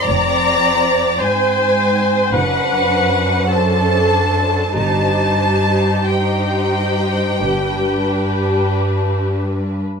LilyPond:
<<
  \new Staff \with { instrumentName = "Violin section" } { \time 4/4 \key c \minor \tempo 4 = 47 bes''4 aes''4 fis''4 a''4 | a''4 g''2 r4 | }
  \new Staff \with { instrumentName = "Viola section" } { \time 4/4 \key c \minor d''4 c''4 b'4 a'4 | g'2.~ g'8 r8 | }
  \new Staff \with { instrumentName = "Violin section" } { \time 4/4 \key c \minor <c' c''>4 <c' c''>4 <d' c''>4 <d' c''>4 | <ees' c''>4 <ees' c''>4 <d' b'>2 | }
  \new Staff \with { instrumentName = "Cello section" } { \clef bass \time 4/4 \key c \minor f,4 aes,4 fis,2 | g,2 g,2 | }
  \new Staff \with { instrumentName = "Double bass section" } { \clef bass \time 4/4 \key c \minor f,,4 r4 fis,,4 r4 | g,,4 r4 g,,4 r4 | }
>>